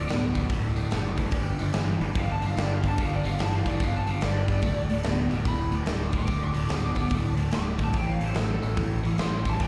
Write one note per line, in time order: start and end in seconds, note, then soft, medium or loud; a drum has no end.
0.00 0.22 D5 medium
0.08 0.31 D1 medium
0.08 0.32 D2 medium
0.08 0.32 B2 medium
0.08 0.29 D4 medium
0.08 0.29 F#4 medium
0.08 0.30 A4 medium
0.08 0.30 D5 medium
0.08 snare loud
0.08 open hi-hat medium
0.33 0.47 D1 medium
0.33 0.48 D2 medium
0.33 0.48 B2 medium
0.33 0.45 D4 medium
0.33 0.45 F#4 medium
0.33 0.45 A4 medium
0.33 0.46 D5 medium
0.33 kick medium
0.33 open hi-hat medium
0.49 0.83 D1 medium
0.49 0.73 D2 medium
0.49 0.74 A2 medium
0.49 0.71 D4 medium
0.49 0.71 F#4 medium
0.49 0.71 A4 medium
0.49 0.71 E5 medium
0.49 kick loud
0.49 open hi-hat medium
0.75 0.89 D2 medium
0.75 0.89 A2 medium
0.75 0.87 D4 medium
0.75 0.87 F#4 medium
0.75 0.88 A4 medium
0.75 0.88 C5 loud
0.75 open hi-hat soft
0.91 1.25 F#1 medium
0.91 1.15 D2 medium
0.91 1.15 A2 medium
0.91 1.12 D4 loud
0.91 1.12 F#4 loud
0.91 1.12 A4 loud
0.91 1.12 D5 loud
0.91 snare loud
0.91 open hi-hat medium
1.16 1.31 D2 medium
1.16 1.31 A2 medium
1.16 1.28 D4 medium
1.16 1.29 F#4 medium
1.16 1.29 A4 medium
1.16 1.29 C5 medium
1.16 kick medium
1.16 open hi-hat medium
1.31 1.54 G1 medium
1.31 1.56 G2 medium
1.31 1.56 D3 medium
1.31 1.53 D4 loud
1.31 1.54 G4 medium
1.31 1.54 B4 loud
1.31 1.54 D5 loud
1.31 kick loud
1.31 open hi-hat medium
1.58 1.72 G1 medium
1.58 1.72 G2 medium
1.58 1.72 D3 medium
1.58 1.70 D4 loud
1.58 1.70 G4 medium
1.58 1.71 B4 medium
1.58 1.71 D5 loud
1.58 open hi-hat medium
1.72 1.96 G1 medium
1.72 1.98 G2 medium
1.72 1.98 E3 loud
1.72 1.94 D4 medium
1.72 1.94 G4 medium
1.72 1.94 B4 medium
1.72 1.94 D5 medium
1.72 snare loud
1.72 open hi-hat medium
2.00 2.13 G1 medium
2.00 2.14 G2 medium
2.00 2.14 E3 medium
2.00 2.12 D4 medium
2.00 2.12 G4 medium
2.00 2.12 B4 medium
2.00 2.13 D5 medium
2.00 open hi-hat medium
2.15 2.49 G1 medium
2.15 2.39 G2 medium
2.15 2.39 D3 medium
2.15 2.36 D4 medium
2.15 2.37 G4 medium
2.15 2.37 B4 medium
2.15 2.30 F5 medium
2.15 kick loud
2.15 open hi-hat medium
2.19 2.38 D5 medium
2.32 2.44 A5 medium
2.41 2.55 G2 medium
2.41 2.55 D3 medium
2.41 2.54 D4 medium
2.41 2.55 G4 medium
2.41 2.55 B4 medium
2.41 open hi-hat medium
2.45 2.55 D5 medium
2.45 2.61 F5 medium
2.56 2.90 G1 medium
2.56 2.80 G2 medium
2.56 2.80 D3 loud
2.56 2.78 D4 medium
2.56 2.78 G4 medium
2.56 2.78 B4 medium
2.56 2.78 D5 loud
2.56 snare loud
2.56 open hi-hat medium
2.61 2.74 D5 loud
2.74 2.85 F5 medium
2.82 2.96 G2 medium
2.82 2.96 D3 medium
2.82 2.95 D4 medium
2.82 2.95 G4 medium
2.82 2.95 B4 medium
2.82 kick medium
2.82 open hi-hat medium
2.86 2.96 D5 medium
2.86 2.99 A5 medium
2.98 3.20 G1 medium
2.98 3.22 G2 medium
2.98 3.22 D3 medium
2.98 3.20 D4 loud
2.98 3.20 G4 medium
2.98 3.20 B4 medium
2.98 3.20 D5 loud
2.98 kick loud
2.98 open hi-hat medium
3.02 3.13 F5 medium
3.16 3.27 D5 medium
3.24 3.37 G1 medium
3.24 3.37 G2 medium
3.24 3.38 D3 medium
3.24 3.36 D4 medium
3.24 3.37 G4 medium
3.24 3.37 B4 medium
3.24 3.37 D5 medium
3.24 3.40 F5 medium
3.24 open hi-hat medium
3.39 3.61 G1 medium
3.39 3.63 G2 medium
3.39 3.63 E3 medium
3.39 3.60 D4 medium
3.39 3.61 G4 medium
3.39 3.62 B4 medium
3.39 3.62 D5 medium
3.39 3.54 A5 medium
3.39 snare loud
3.39 open hi-hat medium
3.56 3.68 F5 medium
3.66 3.78 G1 medium
3.66 3.79 G2 medium
3.66 3.79 E3 medium
3.66 3.78 D4 medium
3.66 3.78 G4 medium
3.66 3.78 B4 medium
3.66 3.81 D5 loud
3.66 3.79 D5 medium
3.66 kick medium
3.66 open hi-hat medium
3.80 4.14 G1 medium
3.80 4.04 G2 medium
3.80 4.05 D3 medium
3.80 4.01 D4 medium
3.80 4.01 G4 medium
3.80 4.02 B4 medium
3.80 4.02 D5 medium
3.80 3.95 F5 medium
3.80 kick loud
3.80 open hi-hat medium
3.96 4.09 A5 medium
4.05 4.20 G2 medium
4.05 4.21 D3 medium
4.05 4.17 D4 medium
4.05 4.18 G4 medium
4.05 4.18 B4 medium
4.05 4.19 D5 medium
4.05 open hi-hat medium
4.11 4.23 F5 medium
4.21 4.56 G1 medium
4.21 4.46 G2 medium
4.21 4.46 D3 loud
4.21 4.42 D4 medium
4.21 4.42 G4 medium
4.21 4.42 B4 medium
4.21 4.43 D5 loud
4.21 4.36 D5 medium
4.21 snare loud
4.21 open hi-hat medium
4.38 5.17 D5 medium
4.48 4.62 G2 medium
4.48 4.62 D3 medium
4.48 4.60 D4 medium
4.48 4.60 G4 medium
4.48 4.60 B4 medium
4.48 4.61 D5 medium
4.48 kick medium
4.48 open hi-hat medium
4.62 4.85 D1 medium
4.62 4.87 D2 medium
4.62 4.87 A2 medium
4.62 4.84 D4 medium
4.62 4.85 F#4 medium
4.62 kick loud
4.62 open hi-hat medium
4.66 4.85 A4 medium
4.66 4.85 D5 loud
4.87 5.02 D1 medium
4.87 5.03 D2 medium
4.87 5.03 A2 medium
4.87 5.00 D4 medium
4.87 5.00 F#4 medium
4.87 5.01 A4 medium
4.87 5.01 D5 loud
4.87 open hi-hat medium
5.03 5.27 D1 medium
5.03 5.28 D2 medium
5.03 5.29 B2 medium
5.03 5.25 D4 medium
5.03 5.25 F#4 medium
5.03 5.25 A4 medium
5.03 5.26 D5 loud
5.03 snare loud
5.03 open hi-hat medium
5.27 5.44 D2 medium
5.27 5.44 B2 medium
5.27 5.41 D4 medium
5.27 5.42 F#4 medium
5.27 5.42 A4 medium
5.27 5.42 D5 medium
5.27 open hi-hat medium
5.32 5.44 D1 medium
5.44 5.79 D1 medium
5.44 5.70 D2 medium
5.44 5.70 A2 medium
5.44 5.66 D4 medium
5.44 5.66 F#4 medium
5.44 5.67 A4 medium
5.44 5.67 D5 medium
5.44 kick loud
5.44 open hi-hat medium
5.48 5.74 B5 loud
5.71 5.85 D2 medium
5.71 5.85 A2 medium
5.71 5.83 D4 medium
5.71 5.83 F#4 medium
5.71 5.84 A4 medium
5.71 5.84 D5 medium
5.71 open hi-hat soft
5.76 6.01 D6 medium
5.86 6.21 D1 medium
5.86 6.11 D2 medium
5.86 6.11 A2 loud
5.86 6.08 D4 medium
5.86 6.08 F#4 medium
5.86 6.08 A4 medium
5.86 6.09 D5 loud
5.86 snare loud
5.86 open hi-hat medium
6.12 6.26 D2 medium
6.12 6.27 A2 medium
6.12 6.26 D4 medium
6.12 6.26 A4 medium
6.12 kick medium
6.12 open hi-hat medium
6.17 6.27 F#4 medium
6.17 6.27 B4 medium
6.17 6.43 D6 medium
6.27 6.50 D1 medium
6.27 6.52 D2 medium
6.27 6.52 A2 medium
6.27 kick loud
6.27 open hi-hat medium
6.32 6.51 D4 loud
6.32 6.51 F#4 medium
6.32 6.52 A4 medium
6.32 6.52 D5 loud
6.44 7.24 D6 loud
6.54 6.67 D1 medium
6.54 6.67 D2 medium
6.54 6.68 A2 medium
6.54 6.68 D4 medium
6.54 open hi-hat medium
6.58 6.68 F#4 medium
6.58 6.68 A4 medium
6.58 6.69 D5 loud
6.68 6.92 D1 medium
6.68 6.93 D2 medium
6.68 6.94 B2 loud
6.68 snare loud
6.68 open hi-hat medium
6.73 6.92 D4 medium
6.73 6.93 F#4 medium
6.73 6.92 A4 medium
6.73 6.93 C5 medium
6.95 7.08 D1 medium
6.95 7.09 D2 medium
6.95 7.10 B2 medium
6.95 7.09 D4 medium
6.95 7.09 F#4 medium
6.95 7.09 D5 medium
6.95 kick medium
6.95 open hi-hat medium
6.99 7.10 A4 medium
7.10 7.45 D1 medium
7.10 7.35 D2 medium
7.10 7.35 A2 medium
7.10 7.32 D4 medium
7.10 7.33 F#4 medium
7.10 7.33 A4 medium
7.10 kick loud
7.10 open hi-hat medium
7.15 7.34 D5 medium
7.37 7.50 D2 medium
7.37 7.51 A2 medium
7.37 7.50 D4 medium
7.37 7.50 F#4 medium
7.37 7.50 A4 medium
7.37 7.51 D5 loud
7.37 open hi-hat medium
7.51 7.94 D1 medium
7.51 7.76 D2 medium
7.51 7.77 A2 medium
7.51 7.75 D4 medium
7.51 7.81 D6 loud
7.51 snare loud
7.51 open hi-hat medium
7.56 7.75 F#4 medium
7.56 7.76 A4 medium
7.56 7.75 E5 medium
7.77 7.92 D2 medium
7.77 7.92 A2 medium
7.77 7.92 D4 medium
7.77 kick medium
7.77 open hi-hat medium
7.82 7.92 F#4 medium
7.82 7.92 A4 medium
7.82 7.92 D5 medium
7.82 7.96 A5 medium
7.93 8.16 A1 medium
7.93 8.18 A2 medium
7.93 8.18 E3 medium
7.93 8.14 C#4 medium
7.93 8.15 E4 medium
7.93 8.15 A4 medium
7.93 8.15 C#5 loud
7.93 kick loud
7.93 open hi-hat medium
7.97 8.09 G5 loud
8.10 8.23 F5 medium
8.20 8.33 A1 medium
8.20 8.33 A2 medium
8.20 8.34 E3 medium
8.20 8.33 C#4 medium
8.20 8.33 E4 medium
8.20 8.34 A4 medium
8.20 8.34 C#5 medium
8.20 open hi-hat medium
8.24 8.39 C5 loud
8.34 8.58 A1 medium
8.34 8.59 A2 medium
8.34 8.59 F#3 medium
8.34 8.58 C#4 medium
8.34 snare loud
8.34 open hi-hat medium
8.38 8.58 E4 medium
8.38 8.58 A4 medium
8.38 8.50 A4 medium
8.38 8.58 C#5 medium
8.52 8.73 A4 medium
8.62 8.75 A1 medium
8.62 8.75 A2 medium
8.62 8.76 F#3 medium
8.62 8.75 C#4 medium
8.62 8.75 E4 medium
8.62 8.76 A4 medium
8.62 open hi-hat soft
8.66 8.76 C#5 medium
8.77 9.11 A1 loud
8.77 9.01 A2 medium
8.77 9.01 E3 medium
8.77 9.00 C#4 medium
8.77 9.00 E4 medium
8.77 kick loud
8.77 open hi-hat medium
8.82 9.00 A4 medium
8.82 9.01 C#5 medium
9.04 9.17 A2 medium
9.04 9.17 E3 medium
9.04 9.17 C#4 medium
9.04 9.16 E4 medium
9.04 9.17 A4 medium
9.04 9.17 C#5 loud
9.04 open hi-hat soft
9.18 9.53 A1 medium
9.18 9.43 A2 medium
9.18 9.43 E3 loud
9.18 9.40 C#4 loud
9.18 9.40 E4 medium
9.18 9.41 A4 medium
9.18 9.41 C#5 loud
9.18 9.47 C6 loud
9.18 snare loud
9.18 open hi-hat medium
9.45 9.59 A2 medium
9.45 9.59 E3 medium
9.45 9.57 C#4 medium
9.45 9.58 E4 medium
9.45 9.57 A4 medium
9.45 9.57 C#5 medium
9.45 kick medium
9.45 open hi-hat medium
9.49 9.62 A5 medium
9.59 9.68 G1 medium
9.59 9.68 G2 medium
9.59 9.68 D3 medium
9.59 9.68 D4 loud
9.59 9.68 G4 medium
9.59 9.68 B4 medium
9.59 9.68 D5 loud
9.59 kick loud
9.59 open hi-hat medium
9.63 9.68 G5 loud